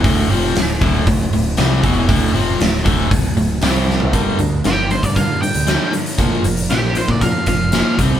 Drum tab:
HH |o-o-o-o-o-o-o-o-|o-o-o-o-o-o-o---|x-x-x-xxx-xxx-xx|x-xxx-x-x-x-x-x-|
SD |----o-------o---|----o-------o-o-|----o-------o---|----o-------o---|
FT |----------------|---------------o|----------------|----------------|
BD |o-----o-o-----o-|o-----o-o-------|o------oo-------|o------oo-o---o-|